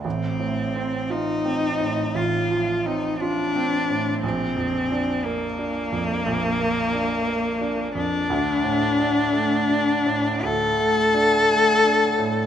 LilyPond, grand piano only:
\new Staff \with { instrumentName = "Grand piano" } { \time 12/8 \key bes \major \tempo 4. = 58 a,,8 a,8 c'8 f'8 c'8 a,8 a,,8 f8 c'8 f'8 c'8 a,8 | bes,,8 f,8 d'8 bes8 d'8 f,8 bes,,8 bes8 d'8 bes8 d'8 f,8 | d,8 a,8 d'8 a8 d'8 a,8 d,8 a8 d'8 a8 d'8 a,8 | }